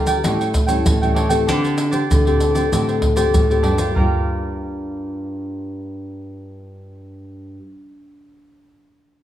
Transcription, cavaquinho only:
0.07 0.23 A#4 medium
0.07 0.23 D5 medium
0.07 0.22 G5 medium
0.24 0.39 G4 soft
0.24 0.39 A4 soft
0.24 0.39 C#5 soft
0.24 0.38 G5 medium
0.39 0.52 A4 soft
0.39 0.53 C#5 soft
0.39 0.53 G5 soft
0.54 muted cavaquinho stroke soft
0.67 0.99 A4 medium
0.67 0.99 C#5 medium
0.67 0.98 G5 medium
1.02 1.14 A4 soft
1.02 1.15 C#5 soft
1.02 1.15 G5 soft
1.14 1.30 G4 medium
1.14 1.29 A4 medium
1.14 1.29 C#5 medium
1.14 1.28 G5 medium
1.29 1.46 A4 medium
1.29 1.46 C#5 medium
1.29 1.45 G5 medium
1.47 1.62 D4 medium
1.47 1.62 G4 medium
1.47 1.63 C5 medium
1.47 1.62 D5 medium
1.64 1.77 G4 soft
1.64 1.77 C5 soft
1.64 1.77 D5 soft
1.91 2.23 G4 soft
1.91 2.23 C5 medium
1.91 2.23 D5 medium
2.25 2.39 G4 soft
2.25 2.40 C5 soft
2.25 2.40 D5 soft
2.40 2.55 D4 soft
2.40 2.55 G4 soft
2.40 2.54 C5 soft
2.40 2.53 D5 soft
2.54 2.71 G4 medium
2.54 2.70 C5 medium
2.54 2.70 D5 medium
2.71 2.86 D4 soft
2.71 2.86 G4 soft
2.71 2.87 C5 soft
2.71 2.87 D5 soft
2.88 3.01 G4 soft
2.88 3.01 C5 soft
2.88 3.02 D5 soft
3.02 muted cavaquinho stroke soft
3.16 3.48 G4 soft
3.16 3.47 C5 medium
3.16 3.47 D5 medium
3.50 3.62 G4 soft
3.50 3.63 C5 soft
3.50 3.63 D5 soft
3.63 3.78 D4 medium
3.63 3.78 G4 medium
3.63 3.77 C5 medium
3.63 3.77 D5 medium
3.78 3.94 G4 medium
3.78 3.94 C5 medium
3.78 3.93 D5 medium
3.95 7.60 F4 medium
3.95 7.61 A#4 medium
3.95 7.62 D5 medium
3.95 7.62 G5 medium

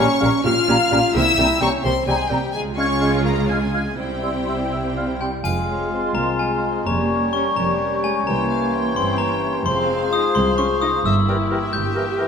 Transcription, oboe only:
0.20 0.28 F5 medium
0.67 0.75 F5 medium
0.90 0.98 F5 medium
1.38 1.46 G5 soft
1.60 1.69 G5 medium
2.07 2.16 G5 medium
2.29 2.38 G5 medium
2.78 2.86 F5 soft
3.00 3.09 F5 soft
3.51 3.59 F5 soft
3.74 3.83 F5 soft
4.22 4.31 E5 soft
4.49 4.57 E5 soft
4.72 4.83 E5 soft
4.97 5.08 F5 soft
5.20 5.31 G5 soft
5.44 6.82 F5 soft
6.88 9.63 C#5 medium
9.65 11.01 C5 medium
11.29 11.37 A#4 soft
11.50 11.58 A#4 soft
11.95 12.04 A#4 soft
12.18 12.26 A#4 soft

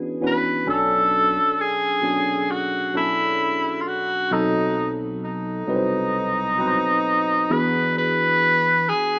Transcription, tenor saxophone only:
0.27 0.67 B4 medium
0.70 1.62 A4 loud
1.61 2.53 G#4 medium
2.51 2.96 F#4 medium
2.97 3.82 E4 medium
3.81 3.89 F4 medium
3.87 4.34 F#4 medium
4.32 4.98 D#4 medium
5.25 7.54 D#4 medium
7.52 7.96 B4 medium
7.98 8.90 B4 loud
8.89 9.19 G#4 medium

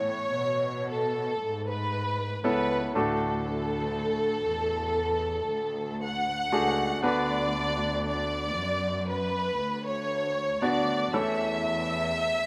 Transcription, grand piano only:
0.00 0.33 A2 soft
0.00 0.33 E3 soft
0.00 0.78 B3 medium
0.00 0.79 C#4 soft
0.00 0.79 E4 soft
0.00 0.79 A4 medium
2.44 2.92 B3 medium
2.44 2.93 C#4 soft
2.44 2.93 E4 soft
2.44 2.93 A4 medium
2.95 4.45 A2 soft
2.95 4.89 A3 medium
2.95 4.89 D4 soft
2.95 4.90 F#4 soft
2.95 4.90 A4 medium
6.52 7.01 A3 medium
6.52 7.01 D4 medium
6.52 7.01 F#4 medium
6.52 7.01 G#4 medium
7.03 8.53 D3 soft
7.03 8.98 B3 medium
7.03 8.98 D4 medium
7.03 8.98 F#4 soft
7.03 8.98 B4 medium
10.62 11.11 B3 medium
10.62 11.11 D4 soft
10.62 11.11 F#4 medium
10.62 11.11 D5 medium
11.13 12.46 E3 soft
11.13 12.46 A3 soft
11.13 12.46 C#4 soft
11.13 12.46 E4 soft
11.13 12.46 A4 medium

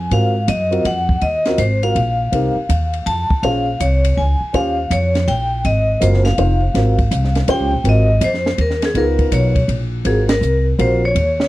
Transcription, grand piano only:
0.12 0.33 C4 medium
0.12 0.33 F4 soft
0.12 0.33 F#4 soft
0.12 0.33 A#4 medium
0.71 0.83 C4 medium
0.71 0.83 F4 medium
0.71 0.84 F#4 medium
0.71 0.84 A#4 medium
1.47 1.58 C4 medium
1.47 1.58 F4 medium
1.47 1.58 F#4 medium
1.47 1.58 A#4 medium
1.83 1.94 C4 medium
1.83 1.95 F4 medium
1.83 1.95 F#4 medium
1.83 1.95 A#4 medium
2.32 2.54 C4 medium
2.32 2.54 D#4 soft
2.32 2.54 G4 soft
2.32 2.55 A#4 medium
3.43 3.65 C#4 medium
3.43 3.65 F4 soft
3.43 3.65 G#4 soft
3.43 3.65 C5 medium
4.53 4.75 C#4 medium
4.53 4.75 F4 soft
4.53 4.76 G4 soft
4.53 4.76 C5 medium
6.00 6.22 C4 medium
6.00 6.22 F4 medium
6.00 6.23 F#4 medium
6.00 6.23 A#4 medium
6.38 6.59 C4 medium
6.38 6.59 D#4 medium
6.38 6.60 F4 soft
6.38 6.60 C5 medium
6.75 6.96 C4 medium
6.75 6.97 F4 soft
6.75 6.97 F#4 soft
6.75 6.97 A#4 medium
7.48 7.70 C#4 medium
7.48 7.70 F4 medium
7.48 7.70 G4 medium
7.48 7.70 C5 medium
7.85 8.07 C4 medium
7.85 8.07 F4 medium
7.85 8.07 F#4 medium
7.85 8.07 A#4 medium
8.95 9.51 B3 medium
8.95 9.51 D#4 medium
8.95 9.51 F4 medium
8.95 9.51 A#4 medium
10.05 10.27 C4 medium
10.05 10.27 F4 soft
10.05 10.27 F#4 soft
10.05 10.27 A#4 medium
10.78 11.00 C4 medium
10.78 11.00 F4 medium
10.78 11.00 F#4 medium
10.78 11.00 A#4 medium

